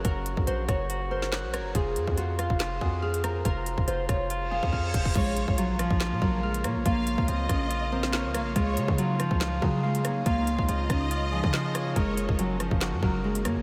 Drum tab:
CC |----------------|----------------|----------------|x---------------|
HH |x-x-x-x-x-----x-|x-x-x-x-x----xx-|x-x-x-x-x-----x-|x-x-x-x-x----xx-|
CP |------------x---|--------x-------|----------------|--------x-------|
SD |------r----oo-r-|------r-o-----r-|------r---------|------r-o-----r-|
BD |o--o--o---------|o--o---o--o-----|o--o--o----oo-oo|o--o---o--o-----|

CC |----------------|----------------|----------------|----------------|
HH |x-x-x-x-x-----x-|x-x-x-x-x----xx-|x-x-x-x-x-----x-|x-x-x-x-x----xx-|
CP |------------x---|--------x-------|------------x---|--------x-------|
SD |------r----oo-r-|------r-o-----r-|------r-----o-r-|------r-o-----r-|
BD |o--o--o---------|o--o---o--o-----|o--o--o----o----|o--o---o--o-----|